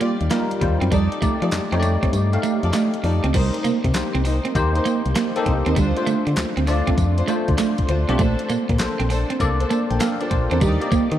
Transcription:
Already playing: G3 D#4 F4 D5 F5
0.00 A#3 F4 G4 D5, closed hi-hat
0.21 D#2, closed hi-hat
0.31 G3 A#3 D#4 F4 A#4, snare, clap, closed hi-hat
0.51 closed hi-hat
0.61 D#2 G3 D#4 F4 C5, muted clean electric guitar stroke, kick, closed hi-hat
0.81 F#2 C4, closed hi-hat
0.91 F2 G3 D#4 G4 A4 D5, kick, closed hi-hat, tambourine
1.12 closed hi-hat
1.21 F3 A3 D#4 G4 D5, kick, closed hi-hat, tambourine
1.42 F3 D#4 G4 A4 D5, muted clean electric guitar stroke, closed hi-hat
1.52 F2, snare, clap, closed hi-hat, tambourine
1.72 F2 A3 C4 D#4 G4 C#5, closed hi-hat
1.80 D5, muted clean electric guitar stroke, closed hi-hat, tambourine
2.03 C4, kick, closed hi-hat
2.13 G2, closed hi-hat, tambourine
2.32 A3 D#4 G4 F5, closed hi-hat
2.43 A3, closed hi-hat, tambourine
2.63 F2 D#4 G4 A4 D5, closed hi-hat
2.73 A3, snare, clap, closed hi-hat, tambourine
2.94 closed hi-hat
3.04 F2 D#4 G4 A4 D5, muted clean electric guitar stroke, open hi-hat
3.24 C#2 C4, closed hi-hat
3.34 C2 G3 D#4 A#4 C5, kick, closed hi-hat, crash, tambourine
3.54 closed hi-hat
3.64 C3 A#3, closed hi-hat, tambourine
3.84 C3, muted clean electric guitar stroke, kick, closed hi-hat
3.94 C2 A#3 D#4 G4 C5, snare, clap, closed hi-hat, tambourine
4.15 C2 C4, closed hi-hat
4.25 D#4 A#4 C5, muted clean electric guitar stroke, open hi-hat, tambourine
4.45 C4, closed hi-hat
4.55 D#2 A#3 D#4 G4 C5, kick, closed hi-hat, tambourine
4.75 D#4 A#4 C5, closed hi-hat
4.85 A#3, closed hi-hat, tambourine
5.06 C2, closed hi-hat
5.16 A#3, snare, clap, closed hi-hat, tambourine
5.36 A#3 D#4 G4 A4 A#4 C5, closed hi-hat
5.46 C2, muted clean electric guitar stroke, kick, closed hi-hat
5.66 D#2 C4 D#4 A#4 C5, closed hi-hat
5.76 D2 G3 D4 F4 C5, kick, closed hi-hat, tambourine
5.96 A3 D4 F4 C5, closed hi-hat
6.06 D3 A3, closed hi-hat, tambourine
6.27 D3, muted clean electric guitar stroke, closed hi-hat
6.37 D2, snare, clap, closed hi-hat, tambourine
6.57 D2 C4, closed hi-hat
6.67 A3 D4 F4 C5 D5, muted clean electric guitar stroke, open hi-hat, tambourine
6.87 C4, kick, closed hi-hat
6.98 F2, kick, closed hi-hat, tambourine
7.17 D4 F4 C5, closed hi-hat
7.28 A3 D4 F4 C5, closed hi-hat, tambourine
7.48 D2, kick, closed hi-hat
7.58 A3, snare, clap, closed hi-hat, tambourine
7.78 kick, closed hi-hat
7.88 D2 D4 F4 C5, muted clean electric guitar stroke, closed hi-hat
8.08 B1 A3 C4 D4 F4 G4, closed hi-hat
8.19 A#1 A3 D4 A4 C5, kick, closed hi-hat, tambourine
8.39 closed hi-hat
8.49 A#2 A#3, closed hi-hat, tambourine
8.69 A#2, muted clean electric guitar stroke, kick, closed hi-hat
8.79 A#1 A#3 D4 A4 C5, snare, clap, closed hi-hat, tambourine
9.00 A#1 C4, closed hi-hat
9.09 D4 A4 C5, muted clean electric guitar stroke, open hi-hat, tambourine
9.30 C4, closed hi-hat
9.40 C2 A#3 D4 A4 D5, kick, closed hi-hat, tambourine
9.60 D4 A4 C5, closed hi-hat
9.70 A#3 C5 A5, closed hi-hat, tambourine
9.90 A#1 A#4 G5, closed hi-hat
10.01 A#3 A4 F5, snare, clap, closed hi-hat, tambourine
10.21 D4 F4 A4 C5 D5, closed hi-hat
10.31 A#1 C5, muted clean electric guitar stroke, kick, closed hi-hat
10.51 E2 C4 D4 A4 A#4 C5, closed hi-hat
10.61 D#2 G3 D#4 G4 D5, kick, closed hi-hat, tambourine
10.80 A#3 D#4 G4 D5, closed hi-hat
10.91 D#3 A#3, kick, closed hi-hat, tambourine
11.12 D#3, muted clean electric guitar stroke, closed hi-hat

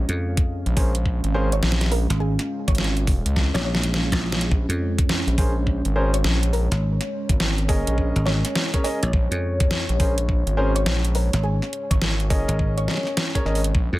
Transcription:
Already playing: G#3 C#4 C#5 F5
0.09 F2, closed hi-hat
0.37 kick, closed hi-hat
0.66 A#1, closed hi-hat
0.77 A#1 C#4 G#4 A#4 C5, kick, open hi-hat
0.95 closed hi-hat
1.06 kick
1.24 G#1, closed hi-hat
1.34 C#4 G#4 A#4 C5
1.52 C#5, closed hi-hat
1.63 A#1, snare
1.72 snare
1.81 snare, closed hi-hat
1.86 snare
1.92 A#4, open hi-hat
2.10 G#1, snare, closed hi-hat
2.20 G#4
2.39 snare, closed hi-hat
2.68 G#1 C#5, kick, closed hi-hat
2.75 snare, closed hi-hat
2.84 closed hi-hat
2.97 closed hi-hat
3.07 kick, open hi-hat
3.25 C#2, closed hi-hat
3.36 kick, snare
3.54 A#1 C#5, snare, closed hi-hat
3.65 C#5
3.75 snare
3.83 closed hi-hat
3.94 snare
4.12 A#1, kick, snare, closed hi-hat
4.32 snare
4.41 closed hi-hat
4.51 A#1 C#5, kick
4.69 F2, closed hi-hat
4.98 kick, closed hi-hat
5.09 snare
5.27 A#1, closed hi-hat
5.38 A#1 C#4 G#4 A#4 C5, kick, open hi-hat
5.67 kick
5.85 G#1, closed hi-hat
5.96 C#4 G#4 A#4 C5
6.14 C#5, closed hi-hat
6.24 A#1, snare
6.43 closed hi-hat
6.53 A#4, open hi-hat
6.71 G#1, snare, closed hi-hat
7.01 snare, closed hi-hat
7.29 G#1, kick, closed hi-hat
7.40 snare
7.58 closed hi-hat
7.68 C#4 G#4 A#4 D#5, kick, open hi-hat
7.87 A#1, closed hi-hat
7.98 kick
8.16 G#1, closed hi-hat
8.26 C#5, snare
8.45 snare, closed hi-hat
8.55 snare
8.74 C#4 G#4 A#4 C#5, kick, closed hi-hat
8.84 C#4 G#4 A#4 C#5 D#5, snare, open hi-hat
9.03 A#1, closed hi-hat
9.13 A#1, kick
9.31 F2, closed hi-hat
9.60 kick, closed hi-hat
9.71 snare
9.89 A#1, closed hi-hat
10.00 A#1 C#4 G#4 A#4 C5, kick, open hi-hat
10.18 closed hi-hat
10.29 kick
10.46 G#1, closed hi-hat
10.57 C#4 G#4 A#4 C5
10.75 C#5, closed hi-hat
10.85 A#1, snare
11.05 closed hi-hat
11.15 A#4, open hi-hat
11.33 G#1, snare, closed hi-hat
11.43 G#4
11.62 snare
11.73 closed hi-hat
11.91 G#1 C#5, kick, closed hi-hat
12.02 snare
12.20 closed hi-hat
12.30 C#4 G#4 A#4 D#5, kick, open hi-hat
12.48 G#1, closed hi-hat
12.59 kick
12.78 C#5, closed hi-hat
12.88 C#5, snare
12.91 snare
12.94 snare
12.97 snare
13.03 snare
13.07 snare
13.17 snare, closed hi-hat
13.35 C#4 G#4 A#4 C#5, kick, closed hi-hat
13.45 G#1 C#4 G#4 A#4 D#5, snare
13.55 open hi-hat
13.64 closed hi-hat
13.74 A#1 C#5, kick
13.93 F2

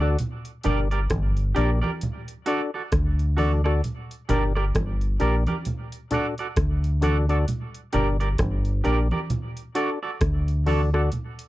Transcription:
Already playing: D2
0.00 D4 F#4 A4 D5
0.19 closed hi-hat, low conga
0.45 closed hi-hat
0.64 G1 D4 G4 A#4 D5, closed hi-hat, low conga
0.91 G4 A#4 D5, closed hi-hat
1.10 G1, kick, cross-stick, closed hi-hat, high conga
1.37 closed hi-hat
1.55 A#1 D4 G4 A#4 D5, closed hi-hat
1.82 G4 A#4 D5, high conga
2.01 closed hi-hat, low conga
2.28 closed hi-hat
2.46 D4 F#4 A4 D5, closed hi-hat
2.74 F#4 A4 D5
2.92 D2, kick, cross-stick, closed hi-hat
3.19 closed hi-hat
3.37 D4 F#4 A4 D5, open hi-hat, high conga
3.64 D4 F#4 A4 D5, cross-stick
3.84 closed hi-hat, low conga
4.11 closed hi-hat
4.29 G1 D4 G4 A#4 D5, closed hi-hat, low conga
4.55 G4 A#4 D5, cross-stick
4.74 G1, kick, cross-stick, closed hi-hat, high conga
5.01 closed hi-hat
5.20 A#1 D4 G4 A#4 D5, closed hi-hat
5.47 G4 A#4 D5, closed hi-hat, high conga
5.65 closed hi-hat, low conga
5.92 closed hi-hat
6.11 D4 F#4 A4 D5, closed hi-hat, low conga
6.38 F#4 A4 D5, closed hi-hat
6.56 D2, kick, cross-stick, closed hi-hat
6.84 closed hi-hat
7.01 D4 F#4 A4 D5, cross-stick, closed hi-hat, high conga
7.29 D4 F#4 A4 D5, closed hi-hat
7.48 closed hi-hat, low conga
7.74 closed hi-hat
7.93 G1 D4 G4 A#4 D5, closed hi-hat, low conga
8.20 G4 A#4 D5, closed hi-hat
8.38 G1, kick, cross-stick, closed hi-hat, high conga
8.65 closed hi-hat
8.84 A#1 D4 G4 A#4 D5, closed hi-hat
9.11 G4 A#4 D5, high conga
9.30 closed hi-hat, low conga
9.57 closed hi-hat
9.75 D4 F#4 A4 D5, closed hi-hat
10.03 F#4 A4 D5
10.21 D2, kick, cross-stick, closed hi-hat
10.48 closed hi-hat
10.66 D4 F#4 A4 D5, open hi-hat, high conga
10.93 D4 F#4 A4 D5, cross-stick
11.12 closed hi-hat, low conga
11.39 closed hi-hat

